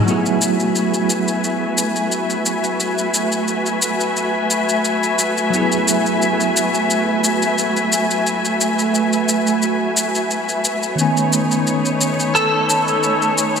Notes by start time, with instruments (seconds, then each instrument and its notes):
0.05 tine electric piano F#3 A3 B3, string section A3 F#4 B4 E5 G#5, shaker
0.10 tine electric piano E4 G#4
0.26 shaker
0.42 shaker
0.60 shaker
0.76 shaker
0.94 shaker
1.10 shaker
1.28 shaker
1.44 shaker
1.78 shaker
1.96 shaker
2.12 shaker
2.30 shaker
2.46 shaker
2.64 shaker
2.80 shaker
2.98 shaker
3.14 shaker
3.32 shaker
3.48 shaker
3.66 shaker
3.82 shaker
4.01 shaker
4.17 shaker
4.50 shaker
4.69 shaker
4.85 shaker
5.03 shaker
5.19 shaker
5.38 shaker
5.50 tine electric piano F#3 A3 B3, shaker
5.55 tine electric piano E4 G#4
5.72 shaker
5.88 shaker
6.06 shaker
6.22 shaker
6.40 shaker
6.57 shaker
6.75 shaker
6.90 shaker
7.24 shaker
7.42 shaker
7.58 shaker
7.77 shaker
7.92 shaker
8.11 shaker
8.27 shaker
8.45 shaker
8.61 shaker
8.79 shaker
8.95 shaker
9.13 shaker
9.29 shaker
9.47 shaker
9.62 shaker
9.97 shaker
10.15 shaker
10.31 shaker
10.49 shaker
10.65 shaker
10.83 shaker
10.96 tine electric piano D#3 A3 B3, string section D#4 B4 C#5, shaker
11.00 tine electric piano C#4 G#5
11.17 shaker
11.33 shaker
11.51 shaker
11.67 shaker
11.85 shaker
12.01 shaker
12.20 shaker
12.35 clean electric guitar A4, shaker
12.70 shaker
12.88 shaker
13.03 shaker
13.22 shaker
13.38 shaker
13.56 shaker